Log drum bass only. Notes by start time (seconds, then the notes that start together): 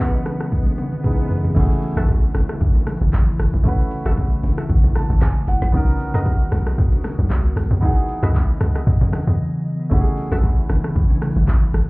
1.56 F#1
1.97 A1
2.35 F#1
2.61 A1
3.01 F#1
3.13 G#1
3.39 F#1
3.53 A1
4.06 F#1
4.43 F#1
4.70 G#1
4.84 A1
5.10 G#1
5.22 F#1
5.47 F#1
5.62 A1
5.74 B1
6.14 D#2
6.52 B1
6.78 D#2
7.19 B1
7.30 C#2
7.56 B1
7.71 D#2
8.23 C#2
8.61 C#2
8.87 D#2
9.01 E2
9.27 D#2
9.91 F#1
10.32 A1
10.69 F#1
10.96 A1
11.36 F#1
11.48 G#1
11.74 F#1